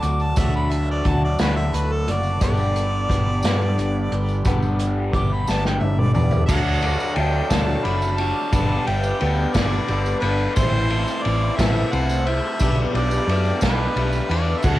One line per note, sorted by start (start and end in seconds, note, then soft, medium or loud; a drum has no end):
0.00 0.35 D2 medium
0.00 0.36 D3 medium
0.00 0.36 F#3 medium
0.00 0.36 A3 medium
0.00 0.39 D4 medium
0.00 0.37 F#4 medium
0.00 2.38 F#4 medium
0.00 0.37 F#4 soft
0.00 6.46 D5 medium
0.00 2.38 A5 medium
0.00 0.24 D6 medium
0.00 closed hi-hat medium
0.05 0.37 A3 soft
0.05 0.37 D4 soft
0.20 0.40 A5 medium
0.20 tambourine soft
0.36 1.02 D2 medium
0.36 1.06 D3 medium
0.36 1.03 F#3 medium
0.36 1.04 A3 medium
0.36 1.06 D4 medium
0.36 1.06 F#4 medium
0.36 0.54 E5 medium
0.36 kick loud
0.36 closed hi-hat medium
0.36 tambourine loud
0.54 0.74 B5 medium
0.54 tambourine soft
0.71 0.88 E5 medium
0.71 closed hi-hat medium
0.91 1.09 D5 medium
1.04 1.37 D2 medium
1.04 1.39 F#3 medium
1.04 1.40 A3 medium
1.04 1.39 D4 medium
1.04 1.38 F#4 medium
1.04 1.23 A5 medium
1.04 kick medium
1.04 closed hi-hat medium
1.25 1.40 D5 medium
1.39 1.71 D2 medium
1.39 2.09 D3 medium
1.39 2.09 F#3 medium
1.39 2.08 A3 medium
1.39 2.09 D4 medium
1.39 2.06 F#4 medium
1.39 1.56 B4 medium
1.39 snare loud
1.39 closed hi-hat medium
1.39 tambourine loud
1.56 1.77 E5 medium
1.56 tambourine soft
1.73 2.05 D2 medium
1.73 1.93 B4 medium
1.73 closed hi-hat medium
1.73 tambourine soft
1.92 2.13 A4 medium
2.07 2.39 F#1 medium
2.07 2.41 A3 soft
2.07 2.41 D4 soft
2.07 2.42 F#4 medium
2.07 2.43 D5 medium
2.07 closed hi-hat medium
2.23 tambourine soft
2.41 3.06 G1 medium
2.41 3.09 G2 medium
2.41 3.10 D3 medium
2.41 3.08 G3 medium
2.41 3.09 B3 medium
2.41 3.10 D4 medium
2.41 6.46 G4 medium
2.41 3.10 G4 medium
2.41 4.43 D5 loud
2.41 6.47 B5 medium
2.41 kick loud
2.41 closed hi-hat medium
2.41 tambourine medium
2.57 tambourine soft
2.76 closed hi-hat medium
3.09 3.41 G1 medium
3.09 3.44 G3 medium
3.09 3.44 B3 medium
3.09 3.43 D4 medium
3.09 3.43 G4 medium
3.09 kick medium
3.09 closed hi-hat medium
3.43 3.75 G2 medium
3.43 4.13 G2 medium
3.43 4.13 D3 medium
3.43 4.13 G3 medium
3.43 4.12 B3 medium
3.43 4.13 D4 medium
3.43 4.11 G4 medium
3.43 snare loud
3.43 closed hi-hat medium
3.43 tambourine medium
3.61 tambourine soft
3.78 4.09 G1 medium
3.78 closed hi-hat medium
3.78 tambourine soft
4.12 4.43 G1 loud
4.12 4.45 G3 soft
4.12 4.45 B3 soft
4.12 4.46 D4 medium
4.12 4.46 G4 medium
4.12 closed hi-hat medium
4.29 tambourine soft
4.45 5.10 G1 medium
4.45 5.13 G2 medium
4.45 5.14 D3 medium
4.45 5.13 G3 medium
4.45 5.14 B3 medium
4.45 5.14 D4 medium
4.45 5.15 G4 medium
4.45 kick loud
4.45 closed hi-hat medium
4.45 tambourine medium
4.62 tambourine soft
4.79 closed hi-hat medium
4.79 tambourine soft
5.14 5.45 G1 medium
5.14 5.48 G3 medium
5.14 5.47 B3 medium
5.14 5.47 D4 medium
5.14 5.46 G4 medium
5.14 5.35 D6 loud
5.14 kick medium
5.14 closed hi-hat medium
5.33 5.51 B5 medium
5.47 5.80 G1 medium
5.47 6.17 G2 medium
5.47 6.17 D3 medium
5.47 6.16 G3 medium
5.47 6.16 B3 medium
5.47 6.15 D4 medium
5.47 6.13 G4 medium
5.47 5.65 A5 medium
5.47 snare medium
5.47 tambourine medium
5.64 5.82 G5 medium
5.64 snare medium
5.64 tambourine soft
5.80 6.13 G1 medium
5.80 6.01 E5 medium
5.80 high tom medium
5.80 tambourine soft
5.99 6.13 D5 medium
5.99 mid tom medium
6.14 6.47 E2 loud
6.14 6.49 B3 medium
6.14 6.49 D4 soft
6.14 6.49 G4 soft
6.14 6.45 D5 medium
6.14 mid tom medium
6.14 tambourine soft
6.18 6.48 G3 soft
6.31 floor tom medium
6.31 tambourine soft
6.46 6.95 D2 medium
6.46 6.83 D3 medium
6.46 8.50 F#3 medium
6.46 6.83 F#3 medium
6.46 6.83 A3 medium
6.46 8.51 D5 medium
6.46 7.17 F#5 loud
6.46 10.52 A5 medium
6.46 kick loud
6.46 crash loud
6.46 tambourine loud
6.50 6.83 D4 medium
6.50 6.81 F#4 medium
6.50 6.83 A4 medium
6.82 7.17 A3 soft
6.82 7.17 D4 medium
6.82 7.17 F#4 medium
6.82 7.19 A4 medium
6.82 ride medium
7.00 tambourine medium
7.15 7.40 D2 medium
7.15 7.83 D3 medium
7.15 7.51 F#3 medium
7.15 7.51 A3 medium
7.15 7.50 D4 medium
7.15 7.51 F#4 loud
7.15 7.51 G5 medium
7.15 ride medium
7.20 7.50 A4 medium
7.50 7.74 D2 medium
7.50 7.86 D3 medium
7.50 7.83 F#3 medium
7.50 7.85 A3 medium
7.50 7.85 D4 medium
7.50 7.85 F#4 medium
7.50 7.87 A4 medium
7.50 7.87 A5 medium
7.50 kick medium
7.50 snare loud
7.50 ride loud
7.50 tambourine loud
7.69 tambourine soft
7.84 8.31 F#1 medium
7.84 8.51 D3 medium
7.84 8.19 F#3 medium
7.84 8.20 A3 medium
7.84 8.20 D4 medium
7.84 8.18 F#4 medium
7.84 8.17 A4 medium
7.84 8.19 B5 medium
7.84 ride medium
7.84 tambourine soft
8.02 tambourine medium
8.18 8.53 D4 medium
8.18 8.53 F#4 medium
8.18 8.54 A4 medium
8.18 8.86 A5 loud
8.18 ride medium
8.23 8.53 A3 soft
8.53 8.76 G1 loud
8.53 8.87 G3 medium
8.53 8.87 B3 medium
8.53 8.87 D4 medium
8.53 10.55 G4 medium
8.53 8.86 A4 medium
8.53 8.84 B4 medium
8.53 10.55 B4 medium
8.53 kick loud
8.53 ride loud
8.53 tambourine loud
8.85 9.11 G1 medium
8.85 9.22 D4 soft
8.85 9.21 A4 soft
8.85 9.21 B4 medium
8.85 9.54 G5 loud
8.85 ride medium
8.90 9.21 B3 soft
9.03 tambourine medium
9.20 9.45 D2 loud
9.20 9.55 G3 medium
9.20 9.56 B3 medium
9.20 9.55 D4 medium
9.20 9.55 A4 medium
9.20 9.52 B4 medium
9.20 ride medium
9.53 9.78 G1 loud
9.53 9.89 D4 medium
9.53 9.89 A4 medium
9.53 9.90 B4 medium
9.53 10.19 D5 medium
9.53 kick medium
9.53 snare loud
9.53 ride loud
9.53 tambourine medium
9.57 9.87 G3 medium
9.57 9.88 B3 medium
9.72 tambourine soft
9.88 10.12 G1 medium
9.88 10.22 G3 medium
9.88 10.23 B3 medium
9.88 10.24 D4 medium
9.88 10.23 A4 medium
9.88 10.21 B4 medium
9.88 ride medium
9.88 tambourine soft
10.06 tambourine medium
10.19 10.46 G1 medium
10.19 10.53 B4 medium
10.19 10.54 B4 medium
10.19 ride medium
10.24 10.58 B3 soft
10.24 10.58 D4 medium
10.24 10.57 A4 medium
10.55 11.03 A1 loud
10.55 10.91 A2 medium
10.55 10.91 E3 medium
10.55 11.24 A3 medium
10.55 10.92 C4 medium
10.55 12.59 E4 medium
10.55 10.91 E4 medium
10.55 11.24 C5 loud
10.55 12.59 C5 medium
10.55 10.88 C5 loud
10.55 14.79 A5 loud
10.55 kick loud
10.55 ride loud
10.55 tambourine loud
10.59 10.90 A4 medium
10.90 11.24 C4 soft
10.90 11.25 E4 medium
10.90 11.25 A4 medium
10.90 11.25 C5 medium
10.90 ride medium
11.08 tambourine medium
11.22 11.49 A1 medium
11.22 11.58 E3 medium
11.22 11.91 A3 medium
11.22 11.58 C4 medium
11.22 11.57 C5 medium
11.22 11.58 D5 medium
11.22 ride medium
11.27 11.57 E4 medium
11.27 11.56 A4 medium
11.56 11.82 A1 loud
11.56 11.93 A2 medium
11.56 11.90 E3 medium
11.56 11.91 C4 medium
11.56 11.92 E4 medium
11.56 11.92 A4 medium
11.56 11.93 C5 medium
11.56 11.93 E5 loud
11.56 kick medium
11.56 snare loud
11.56 ride medium
11.56 tambourine loud
11.76 tambourine soft
11.91 12.39 C2 medium
11.91 12.26 E3 medium
11.91 12.59 A3 medium
11.91 12.27 C4 medium
11.91 12.27 E4 medium
11.91 12.25 A4 medium
11.91 12.25 C5 medium
11.91 12.29 F#5 medium
11.91 ride medium
11.91 tambourine soft
12.09 tambourine medium
12.26 12.61 C4 soft
12.26 12.62 E4 medium
12.26 12.61 A4 medium
12.26 12.58 C5 medium
12.26 12.79 E5 loud
12.26 ride medium
12.60 12.84 B1 medium
12.60 12.94 B2 medium
12.60 12.95 G3 medium
12.60 12.95 A3 medium
12.60 13.26 B3 loud
12.60 12.95 D4 medium
12.60 14.62 G4 medium
12.60 12.93 G4 medium
12.60 14.62 B4 medium
12.60 12.92 B4 loud
12.60 kick loud
12.60 ride loud
12.60 tambourine loud
12.93 13.18 B1 medium
12.93 13.28 A3 soft
12.93 13.29 D4 medium
12.93 13.28 G4 medium
12.93 13.29 B4 medium
12.93 13.59 D5 loud
12.93 ride medium
13.11 tambourine medium
13.27 13.51 F#2 loud
13.27 13.62 A3 medium
13.27 13.94 B3 medium
13.27 13.62 D4 medium
13.27 13.61 G4 medium
13.27 13.61 B4 medium
13.27 ride medium
13.45 tambourine soft
13.61 13.86 B1 medium
13.61 13.98 B2 medium
13.61 13.94 G3 medium
13.61 13.95 A3 medium
13.61 13.97 D4 medium
13.61 13.97 G4 medium
13.61 13.97 B4 medium
13.61 14.33 B4 medium
13.61 kick medium
13.61 snare loud
13.61 ride loud
13.61 tambourine loud
13.95 14.19 B1 medium
13.95 14.30 G3 medium
13.95 14.31 A3 medium
13.95 14.62 B3 medium
13.95 14.30 D4 medium
13.95 14.28 G4 medium
13.95 14.28 B4 medium
13.95 ride medium
14.13 tambourine medium
14.29 14.53 E2 medium
14.29 14.63 A3 soft
14.29 14.65 D4 medium
14.29 14.64 G4 medium
14.29 14.62 B4 medium
14.29 14.59 D5 medium
14.29 ride medium
14.29 tambourine soft
14.58 14.66 E5 medium
14.63 14.79 D2 medium
14.63 14.79 D3 medium
14.63 14.79 F#3 medium
14.63 14.79 A3 medium
14.63 14.79 D4 medium
14.63 14.79 F#4 medium
14.63 14.79 A4 loud
14.63 14.79 F#5 loud
14.63 kick loud
14.63 crash loud
14.63 tambourine medium
14.67 14.79 D5 medium